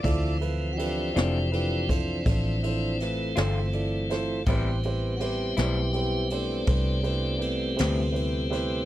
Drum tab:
RD |xxxxxxxxxxxx|xxxxxxxxxxxx|
SD |---o----oo-o|---o-----o-o|
BD |o----oo-----|o-----o-----|